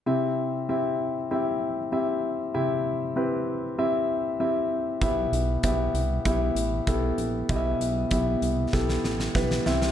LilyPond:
<<
  \new Staff \with { instrumentName = "Grand piano" } { \time 4/4 \key c \major \tempo 4 = 97 <c' e' g' e''>4 <c' e' g' e''>4 <c' e' g' e''>4 <c' e' g' e''>4 | <c' e' g' e''>4 <c' e' g' b'>4 <c' e' g' e''>4 <c' e' g' e''>4 | <b e' g' e''>4 <b e' g' e''>4 <b e' g' e''>4 <b e' g' a'>4 | <b e' g' ees'' e''>4 <b e' g' e''>4 <b e' g' a'>4 <b e' g' b'>8 <c' e' g' e''>8 | }
  \new Staff \with { instrumentName = "Grand piano" } { \clef bass \time 4/4 \key c \major c4. r2 r8 | c4. r2 r8 | b,4. r2 r8 | b,4. r2 r8 | }
  \new Staff \with { instrumentName = "Analog synth bass" } { \clef bass \time 4/4 \key c \major r1 | r1 | b,,8 b,,8 b,,8 c,8 b,,8 a,,8 b,,8 bes,,8 | b,,8 b,,8 b,,8 c,8 b,,8 a,,8 b,,8 c,8 | }
  \new DrumStaff \with { instrumentName = "Drums" } \drummode { \time 4/4 r4 r4 r4 r4 | r4 r4 r4 r4 | <hh bd>8 hh8 <hh bd>8 hh8 <hh bd>8 hh8 <hh bd>8 hh8 | <hh bd>8 hh8 <hh bd>8 hh8 <bd sn>16 sn16 sn16 sn16 <bd sn>16 sn16 sn16 sn16 | }
>>